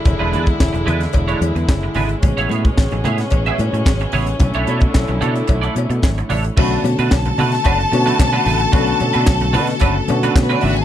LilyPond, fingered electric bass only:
\new Staff \with { instrumentName = "Fingered electric bass" } { \clef bass \time 4/4 \key b \dorian \tempo 4 = 111 e,,16 e,,16 e,8 e,,16 e,,16 e,8 e,,8 e,16 e,16 fis,,8 gis,,8 | a,,16 a,,16 a,8 a,,16 a,,16 a,8 a,,8 a,16 a,16 gis,,8 a,,8 | b,,16 b,,16 b,8 b,,16 b,,16 b,8 b,,8 b,16 b,16 gis,,8 a,,8 | b,,8 b,16 b,16 b,,8 b,8 fis,,8 b,8 b,8 a,,8 |
b,,8 b,16 b,16 b,,8 b,8 fis,,8 b,8 b,8 gis,,8 | }